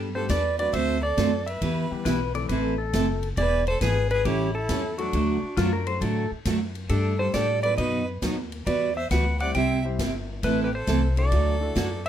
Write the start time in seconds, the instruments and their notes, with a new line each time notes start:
Already playing: upright bass G2
0.15 upright piano G3 A3 B3 D4 G4, fiddle A4, electric slide guitar C5
0.29 upright bass E2, steel-string acoustic guitar G3 B3 D4 A4, fiddle B4, electric slide guitar D5, kick, snare, hi-hat pedal, ride
0.58 upright piano F#3 A3 C4 D4 F#4, fiddle B4, electric slide guitar D5, ride
0.73 upright bass D2, steel-string acoustic guitar D3 A3 C4 F#4 A4, fiddle C5, electric slide guitar E5, kick, ride
1.02 fiddle A4, electric slide guitar D5
1.17 upright bass F#2, steel-string acoustic guitar D3 A3 C4 F#4 A4, kick, snare, hi-hat pedal, ride
1.46 fiddle B4, electric slide guitar E5, ride
1.61 upright bass E2, steel-string acoustic guitar E3 B3 E4 G4 B4, kick, ride
1.91 upright piano E3 G3 B3 E4 G4, muted upright bass stroke
2.05 upright bass B1, steel-string acoustic guitar E3 B3 E4 G4 B4, pedal steel guitar B4, kick, snare, hi-hat pedal, ride
2.34 upright piano E3 A3 C4 E4 A4, pedal steel guitar D5, ride
2.49 upright bass A1, steel-string acoustic guitar E3 A3 C4 E4 A4, pedal steel guitar B4, kick, ride
2.78 pedal steel guitar A4
2.93 upright bass F#1, steel-string acoustic guitar E3 A3 C4 E4 A4, kick, snare, hi-hat pedal, ride
3.23 ride
3.37 upright bass E1, steel-string acoustic guitar E3 B3 E4 G#4, fiddle B4, electric slide guitar D5, kick, ride
3.67 fiddle A4, electric slide guitar C5, ride
3.81 upright bass G#1, steel-string acoustic guitar E3 B3 E4 G#4, fiddle G#4, electric slide guitar B4, kick, snare, hi-hat pedal, ride
4.10 fiddle G#4, electric slide guitar B4, ride
4.25 upright bass A1, steel-string acoustic guitar E3 G3 C#4 E4 A4, fiddle E4, electric slide guitar G4, kick, ride
4.55 fiddle E4, electric slide guitar A4
4.69 upright bass E2, steel-string acoustic guitar E3 G3 C#4 E4 A4, kick, snare, hi-hat pedal, ride
4.98 upright piano F#3 A3 D4 F#4 A4, fiddle D4, electric slide guitar F#4, ride
5.13 upright bass D2, steel-string acoustic guitar D3 F#3 A3 D4 F#4, kick, ride
5.43 muted upright bass stroke
5.57 upright bass F#2, steel-string acoustic guitar D3 F#3 A3 D4 F#4, pedal steel guitar F4, kick, snare, hi-hat pedal, ride
5.73 pedal steel guitar A#4
5.87 upright piano F#3 A3 D4 F#4 A4, pedal steel guitar C5, ride
6.01 upright bass A2, steel-string acoustic guitar D3 F#3 A3 D4 F#4, pedal steel guitar A4, kick, ride
6.31 muted upright bass stroke
6.45 upright bass F#2, steel-string acoustic guitar D3 F#3 A3 D4 F#4, kick, snare, hi-hat pedal, ride
6.75 ride
6.89 upright bass G2, steel-string acoustic guitar G3 A3 D4 G4, fiddle D4, electric slide guitar A4, kick, ride
7.19 upright piano G3 A3 D4 G4 A4, fiddle A4, electric slide guitar C5
7.33 upright bass A2, steel-string acoustic guitar G3 A3 D4 G4, fiddle A4, electric slide guitar D5, kick, snare, hi-hat pedal, ride
7.63 upright piano F#3 B3 D#4 F#4 A4, fiddle B4, electric slide guitar D5, ride
7.78 upright bass F#2, steel-string acoustic guitar B2 F#3 B3 D#4 F#4, fiddle B4, electric slide guitar D#5, kick, ride
8.22 upright bass D#2, steel-string acoustic guitar B2 F#3 B3 D#4 F#4, kick, snare, hi-hat pedal, ride
8.52 ride
8.66 upright bass E2, steel-string acoustic guitar E3 G3 B3 F#4, fiddle B4, electric slide guitar D5, kick, ride
8.96 fiddle C5, electric slide guitar E5
9.10 upright bass D2, steel-string acoustic guitar E3 G3 B3 F#4, fiddle B4, electric slide guitar F#5, kick, snare, hi-hat pedal, ride
9.40 upright piano G3 C4 E4 G4 C5, fiddle D5, electric slide guitar F#5, ride
9.54 upright bass C2, steel-string acoustic guitar C3 G3 C4 E4 G4, fiddle E5, electric slide guitar G5, kick, ride
9.84 upright piano G3 C4 E4 G4 C5
9.99 upright bass G1, steel-string acoustic guitar C3 G3 C4 E4 G4, kick, snare, hi-hat pedal, ride
10.43 upright bass A1, steel-string acoustic guitar E3 A3 C4 E4 A4, fiddle E4, electric slide guitar B4, kick, ride
10.63 fiddle G4, electric slide guitar B4
10.74 fiddle A4, electric slide guitar C5
10.87 upright bass C2, steel-string acoustic guitar E3 A3 C4 E4 A4, kick, snare, hi-hat pedal, ride
11.17 upright piano A3 D4 E4 F#4 A4, fiddle A4, electric slide guitar D5, ride
11.32 upright bass D2, steel-string acoustic guitar D3 F#3 A3 E4 F#4, kick, ride
11.61 upright piano A3 D4 E4 F#4 A4
11.75 upright bass F#2, steel-string acoustic guitar D3 F#3 A3 E4 F#4, kick, snare, hi-hat pedal, ride
12.06 fiddle C5, electric slide guitar E5, ride